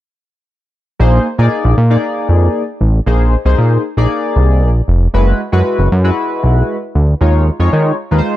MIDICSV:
0, 0, Header, 1, 3, 480
1, 0, Start_track
1, 0, Tempo, 517241
1, 930, Time_signature, 4, 2, 24, 8
1, 7765, End_track
2, 0, Start_track
2, 0, Title_t, "Analog polysynth"
2, 0, Program_c, 0, 90
2, 923, Note_on_c, 0, 58, 86
2, 925, Note_on_c, 0, 63, 78
2, 930, Note_on_c, 0, 72, 99
2, 931, Note_on_c, 0, 68, 74
2, 1178, Note_off_c, 0, 58, 0
2, 1179, Note_off_c, 0, 63, 0
2, 1181, Note_off_c, 0, 68, 0
2, 1181, Note_off_c, 0, 72, 0
2, 1284, Note_on_c, 0, 58, 83
2, 1287, Note_on_c, 0, 63, 75
2, 1289, Note_on_c, 0, 68, 80
2, 1291, Note_on_c, 0, 74, 98
2, 1622, Note_off_c, 0, 58, 0
2, 1623, Note_off_c, 0, 63, 0
2, 1624, Note_off_c, 0, 68, 0
2, 1625, Note_off_c, 0, 74, 0
2, 1765, Note_on_c, 0, 58, 81
2, 1766, Note_on_c, 0, 63, 74
2, 1769, Note_on_c, 0, 68, 79
2, 1772, Note_on_c, 0, 74, 86
2, 2437, Note_off_c, 0, 58, 0
2, 2438, Note_off_c, 0, 63, 0
2, 2439, Note_off_c, 0, 68, 0
2, 2441, Note_off_c, 0, 74, 0
2, 2843, Note_on_c, 0, 58, 85
2, 2847, Note_on_c, 0, 63, 80
2, 2850, Note_on_c, 0, 68, 77
2, 2853, Note_on_c, 0, 72, 91
2, 3098, Note_off_c, 0, 58, 0
2, 3100, Note_off_c, 0, 63, 0
2, 3101, Note_off_c, 0, 68, 0
2, 3102, Note_off_c, 0, 72, 0
2, 3203, Note_on_c, 0, 58, 82
2, 3207, Note_on_c, 0, 63, 76
2, 3209, Note_on_c, 0, 68, 75
2, 3211, Note_on_c, 0, 72, 95
2, 3541, Note_off_c, 0, 58, 0
2, 3543, Note_off_c, 0, 63, 0
2, 3544, Note_off_c, 0, 68, 0
2, 3545, Note_off_c, 0, 72, 0
2, 3685, Note_on_c, 0, 58, 84
2, 3689, Note_on_c, 0, 63, 71
2, 3689, Note_on_c, 0, 68, 80
2, 3694, Note_on_c, 0, 74, 101
2, 4357, Note_off_c, 0, 58, 0
2, 4359, Note_off_c, 0, 63, 0
2, 4359, Note_off_c, 0, 68, 0
2, 4362, Note_off_c, 0, 74, 0
2, 4767, Note_on_c, 0, 56, 82
2, 4771, Note_on_c, 0, 64, 76
2, 4772, Note_on_c, 0, 66, 75
2, 4774, Note_on_c, 0, 71, 94
2, 5019, Note_off_c, 0, 56, 0
2, 5022, Note_off_c, 0, 64, 0
2, 5022, Note_off_c, 0, 66, 0
2, 5023, Note_off_c, 0, 71, 0
2, 5124, Note_on_c, 0, 56, 83
2, 5126, Note_on_c, 0, 64, 75
2, 5128, Note_on_c, 0, 66, 78
2, 5133, Note_on_c, 0, 71, 94
2, 5462, Note_off_c, 0, 56, 0
2, 5463, Note_off_c, 0, 64, 0
2, 5464, Note_off_c, 0, 66, 0
2, 5466, Note_off_c, 0, 71, 0
2, 5605, Note_on_c, 0, 56, 83
2, 5607, Note_on_c, 0, 64, 82
2, 5610, Note_on_c, 0, 71, 91
2, 5611, Note_on_c, 0, 66, 79
2, 6277, Note_off_c, 0, 56, 0
2, 6278, Note_off_c, 0, 64, 0
2, 6280, Note_off_c, 0, 66, 0
2, 6280, Note_off_c, 0, 71, 0
2, 6688, Note_on_c, 0, 56, 86
2, 6691, Note_on_c, 0, 63, 75
2, 6695, Note_on_c, 0, 65, 75
2, 6696, Note_on_c, 0, 73, 82
2, 6940, Note_off_c, 0, 56, 0
2, 6942, Note_off_c, 0, 63, 0
2, 6943, Note_off_c, 0, 65, 0
2, 6944, Note_off_c, 0, 73, 0
2, 7048, Note_on_c, 0, 56, 88
2, 7051, Note_on_c, 0, 63, 83
2, 7052, Note_on_c, 0, 65, 81
2, 7054, Note_on_c, 0, 73, 95
2, 7384, Note_off_c, 0, 56, 0
2, 7385, Note_off_c, 0, 63, 0
2, 7386, Note_off_c, 0, 65, 0
2, 7387, Note_off_c, 0, 73, 0
2, 7526, Note_on_c, 0, 56, 84
2, 7529, Note_on_c, 0, 63, 80
2, 7534, Note_on_c, 0, 65, 76
2, 7534, Note_on_c, 0, 71, 80
2, 7590, Note_off_c, 0, 71, 0
2, 7594, Note_on_c, 0, 72, 101
2, 7765, Note_off_c, 0, 56, 0
2, 7765, Note_off_c, 0, 63, 0
2, 7765, Note_off_c, 0, 65, 0
2, 7765, Note_off_c, 0, 72, 0
2, 7765, End_track
3, 0, Start_track
3, 0, Title_t, "Analog synth bass"
3, 0, Program_c, 1, 38
3, 926, Note_on_c, 1, 34, 101
3, 1108, Note_off_c, 1, 34, 0
3, 1288, Note_on_c, 1, 46, 96
3, 1379, Note_off_c, 1, 46, 0
3, 1526, Note_on_c, 1, 34, 109
3, 1618, Note_off_c, 1, 34, 0
3, 1647, Note_on_c, 1, 46, 109
3, 1829, Note_off_c, 1, 46, 0
3, 2125, Note_on_c, 1, 41, 89
3, 2308, Note_off_c, 1, 41, 0
3, 2606, Note_on_c, 1, 33, 81
3, 2788, Note_off_c, 1, 33, 0
3, 2845, Note_on_c, 1, 34, 97
3, 3119, Note_off_c, 1, 34, 0
3, 3205, Note_on_c, 1, 36, 92
3, 3297, Note_off_c, 1, 36, 0
3, 3325, Note_on_c, 1, 46, 105
3, 3508, Note_off_c, 1, 46, 0
3, 3685, Note_on_c, 1, 34, 82
3, 3777, Note_off_c, 1, 34, 0
3, 4046, Note_on_c, 1, 36, 89
3, 4288, Note_on_c, 1, 34, 80
3, 4302, Note_off_c, 1, 36, 0
3, 4470, Note_off_c, 1, 34, 0
3, 4529, Note_on_c, 1, 29, 87
3, 4710, Note_off_c, 1, 29, 0
3, 4768, Note_on_c, 1, 30, 104
3, 4950, Note_off_c, 1, 30, 0
3, 5130, Note_on_c, 1, 42, 97
3, 5220, Note_off_c, 1, 42, 0
3, 5370, Note_on_c, 1, 30, 95
3, 5460, Note_off_c, 1, 30, 0
3, 5493, Note_on_c, 1, 42, 124
3, 5673, Note_off_c, 1, 42, 0
3, 5972, Note_on_c, 1, 35, 82
3, 6152, Note_off_c, 1, 35, 0
3, 6451, Note_on_c, 1, 38, 80
3, 6632, Note_off_c, 1, 38, 0
3, 6691, Note_on_c, 1, 39, 94
3, 6962, Note_off_c, 1, 39, 0
3, 7049, Note_on_c, 1, 41, 81
3, 7140, Note_off_c, 1, 41, 0
3, 7172, Note_on_c, 1, 51, 115
3, 7352, Note_off_c, 1, 51, 0
3, 7532, Note_on_c, 1, 39, 79
3, 7621, Note_off_c, 1, 39, 0
3, 7765, End_track
0, 0, End_of_file